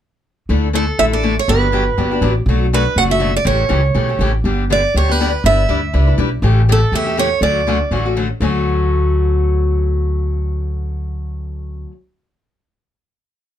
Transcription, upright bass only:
0.49 0.88 D2 medium
0.99 1.38 A1 medium
1.48 1.87 G1 medium
1.98 2.18 G1 medium
2.21 2.42 A1 medium
2.46 2.86 B1 medium
2.96 3.35 F#1 medium
3.45 3.65 A1 medium
3.71 3.91 C#2 medium
3.95 4.16 B1 medium
4.19 4.40 A1 medium
4.44 4.84 G1 medium
4.94 5.34 D2 medium
5.44 5.64 G1 medium
5.69 5.90 D2 medium
5.94 6.15 C#2 medium
6.18 6.39 B1 medium
6.42 6.82 A1 medium
6.92 7.32 E2 medium
7.41 7.81 D2 medium
7.91 8.31 A1 medium
8.40 11.84 D2 medium

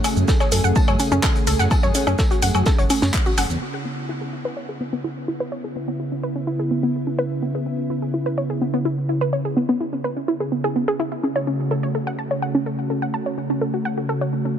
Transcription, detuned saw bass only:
0.17 0.24 F#2 medium
0.52 0.60 F#2 medium
0.64 0.72 F#2 medium
0.88 0.96 F#2 medium
1.12 1.19 F#2 medium
1.47 1.55 C#2 medium
1.59 1.67 F#2 medium
1.83 1.91 F#2 medium
2.07 2.15 F#2 medium
2.42 2.51 F#2 medium
2.55 2.62 F#2 medium
2.78 2.86 F#1 medium
3.02 3.10 F#2 medium
3.38 3.46 F#1 medium
3.50 3.58 E2 medium

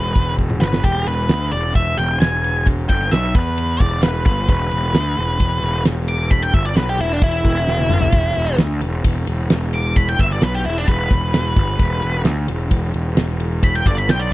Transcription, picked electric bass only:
0.00 0.14 E1 medium
0.16 0.58 E1 medium
0.61 0.82 G1 medium
0.84 1.05 E1 medium
1.07 1.28 E1 medium
1.30 1.51 D2 medium
1.52 1.74 E1 medium
1.75 1.97 E1 medium
1.98 2.19 E1 medium
2.21 2.85 E1 loud
2.90 3.11 G1 loud
3.12 3.33 B1 loud
3.35 3.77 E2 medium
3.80 4.23 E1 medium
4.26 4.47 G1 medium
4.48 4.70 E1 loud
4.72 4.93 E1 medium
4.94 5.16 D2 loud
5.17 5.38 E1 medium
5.40 5.61 E1 medium
5.62 5.84 E1 medium
5.86 6.50 E1 medium
6.54 6.75 G1 medium
6.77 6.98 B1 medium
6.99 7.20 E1 medium
7.22 7.43 E1 medium
7.44 7.87 E1 medium
7.91 8.12 G1 loud
8.13 8.34 E1 medium
8.36 8.58 E1 medium
8.59 8.81 D2 medium
8.82 9.03 E1 medium
9.05 9.26 E1 medium
9.28 9.49 E1 medium
9.50 10.15 E1 medium
10.19 10.41 G1 medium
10.43 10.64 B1 loud
10.66 10.87 E1 medium
10.88 11.09 E1 medium
11.11 11.54 E1 medium
11.56 11.78 G1 medium
11.79 12.01 E1 medium
12.03 12.24 E1 medium
12.25 12.47 D2 loud
12.48 12.70 E1 medium
12.71 12.93 E1 medium
12.94 13.15 E1 medium
13.17 13.82 E1 loud
13.86 14.07 G1 medium
14.09 14.30 B1 medium

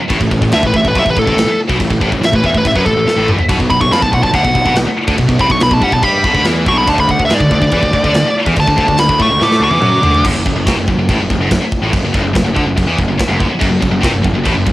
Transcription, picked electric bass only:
0.10 0.20 A1 loud
0.21 0.30 A1 medium
0.31 0.41 A1 medium
0.41 0.52 A1 medium
0.52 0.62 D2 loud
0.62 0.73 A1 medium
0.73 0.84 A1 medium
0.84 0.94 A1 medium
0.95 1.04 B1 medium
1.05 1.15 A1 medium
1.17 1.26 A1 medium
1.27 1.34 A1 loud
1.34 1.45 A1 medium
1.46 muted picked electric bass stroke soft
1.69 1.79 B1 medium
1.80 1.90 A1 medium
1.90 2.00 A1 medium
2.01 2.11 A1 medium
2.12 2.19 A1 medium
2.20 2.31 A1 medium
2.33 2.43 A1 medium
2.43 2.53 E2 loud
2.54 2.64 A1 medium
2.65 2.75 A1 medium
2.76 2.85 F#2 medium
2.86 2.95 A1 medium
2.96 3.06 A1 medium
3.07 muted picked electric bass stroke soft
3.16 3.37 A1 loud
3.39 muted picked electric bass stroke soft
3.49 3.59 B1 loud
3.60 3.70 B1 medium
3.71 3.80 B1 medium
3.81 3.91 B1 medium
3.91 4.01 F2 loud
4.02 4.12 B1 medium
4.12 4.23 B1 medium
4.24 4.33 B1 medium
4.34 4.44 D2 medium
4.44 4.54 B1 medium
4.55 4.65 B1 medium
4.66 4.76 B1 loud
4.77 4.87 B1 medium
4.89 muted picked electric bass stroke soft
5.08 5.18 D2 medium
5.18 5.28 B1 medium
5.29 5.39 B1 medium
5.39 5.49 C2 medium
5.50 5.60 B1 medium
5.61 5.70 B1 medium
5.70 5.81 B1 medium
5.81 5.91 G2 loud
5.91 6.02 B1 medium
6.02 6.23 G2 medium
6.24 6.33 B1 loud
6.34 6.44 D2 loud
6.47 6.66 E2 loud
6.67 6.86 B1 loud
6.88 6.97 D2 loud
6.98 7.08 D2 medium
7.09 7.18 D2 medium
7.19 7.29 D2 medium
7.32 7.40 G#2 loud
7.40 7.50 D2 medium
7.51 7.60 D2 medium
7.61 7.71 D2 medium
7.72 7.82 E2 medium
7.83 7.92 D2 medium
7.92 8.03 D2 medium
8.04 8.13 D2 loud
8.13 8.24 D2 medium
8.24 muted picked electric bass stroke soft
8.46 8.56 E2 loud
8.56 8.66 D2 medium
8.67 8.76 D2 medium
8.77 8.87 D2 medium
8.88 8.98 D2 medium
8.99 9.08 D2 medium
9.08 9.18 D2 medium
9.19 9.29 A2 loud
9.29 9.39 D2 medium
9.41 9.59 A2 loud
9.60 9.70 D2 loud
9.70 9.80 E2 loud
9.81 10.01 F#2 loud
10.02 10.22 D2 loud
10.25 10.32 F#1 loud
10.33 10.44 F#1 medium
10.46 10.54 F#1 medium
10.55 10.65 F#1 medium
10.66 10.76 C2 loud
10.77 10.87 F#1 medium
10.88 10.96 F#1 medium
10.97 11.07 F#1 medium
11.09 11.18 A1 loud
11.18 11.29 F#1 medium
11.30 11.36 F#1 medium
11.37 11.49 F#1 medium
11.51 11.60 F#1 medium
11.61 muted picked electric bass stroke soft
11.82 11.92 A1 medium
11.93 12.02 F#1 medium
12.02 12.13 F#1 medium
12.14 12.24 G1 loud
12.24 12.34 F#1 medium
12.35 12.43 F#1 medium
12.44 12.55 F#1 medium
12.56 12.64 D2 loud
12.64 12.75 F#1 medium
12.77 12.86 F#1 medium
12.87 12.97 E2 loud
12.98 13.06 F#1 loud
13.07 13.18 F#1 medium
13.20 muted picked electric bass stroke soft
13.29 13.48 F#1 loud
13.49 muted picked electric bass stroke soft
13.61 13.68 F#1 medium
13.69 13.80 F#1 medium
13.82 13.90 F#1 medium
13.90 14.01 F#1 medium
14.03 14.11 C2 loud
14.12 14.23 F#1 medium
14.24 14.32 F#1 medium
14.33 14.44 F#1 medium
14.46 14.53 A1 medium
14.54 14.65 F#1 medium
14.67 14.73 F#1 medium

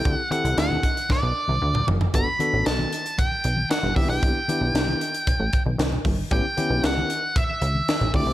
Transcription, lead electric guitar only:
0.00 0.16 G5 loud
0.16 0.28 F#5 loud
0.32 0.58 F#5 medium
0.59 1.12 F#5 loud
1.12 1.85 D5 medium
2.15 2.66 B5 loud
2.66 3.20 A5 loud
3.19 3.70 G5 loud
3.71 3.95 F#5 medium
3.96 4.09 E5 medium
4.10 5.62 G5 medium
6.33 6.81 G5 loud
6.85 7.38 F#5 loud
7.37 8.11 E5 loud
8.16 8.33 D5 medium

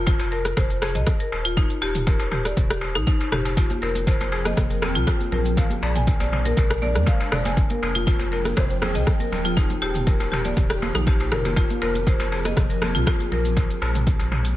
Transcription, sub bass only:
0.00 0.16 F1 loud
0.20 0.54 F1 medium
0.57 0.96 F1 loud
0.95 1.05 C2 loud
1.32 1.66 D#1 loud
1.82 2.16 D#1 loud
2.20 2.53 D#1 medium
2.57 2.97 D#1 loud
2.95 3.05 A#1 loud
3.32 3.66 F1 medium
3.82 4.16 F1 loud
4.20 4.53 F1 medium
4.57 4.96 F1 loud
4.95 5.05 C2 loud
5.32 5.66 A#1 loud
5.82 6.16 A#1 loud
6.20 6.53 A#1 medium
6.57 6.97 A#1 loud
6.95 7.05 F2 loud
7.32 7.66 F1 medium
7.82 8.16 F1 loud
8.20 8.53 F1 medium
8.57 8.97 F1 loud
8.95 9.05 C2 loud
9.31 9.66 D#1 medium
9.82 10.16 D#1 loud
10.20 10.53 D#1 medium
10.57 10.91 D#1 loud
10.95 11.33 A#1 medium
11.32 11.66 F1 loud
11.82 12.16 F1 loud
12.20 12.53 F1 medium
12.57 12.96 F1 loud
12.95 13.05 C2 loud
13.31 13.66 A#1 medium
13.81 14.16 A#1 loud
14.20 14.53 A#1 medium

